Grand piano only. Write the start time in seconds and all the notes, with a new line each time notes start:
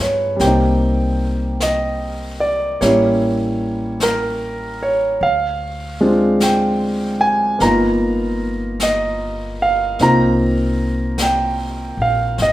Already playing: B3 D#4 F4 G#4 B4 G#5
0.01 C#5
0.36 G3 A#3
0.41 C4 G5
0.47 D#4
1.63 D#5
2.40 D5
2.81 G3 A#3 C#4 E4 C#5
4.03 A#4
4.83 C#5
5.23 F5
6.01 G#3 C4 D4 F4
6.43 G5
7.21 G#5
7.59 A#3 B3 D#4 A#5
7.64 F4
8.83 D#5
9.62 F5
10.01 A#3 C4 D#4 F4 A#5
11.22 G5
12.02 F5
12.42 D#5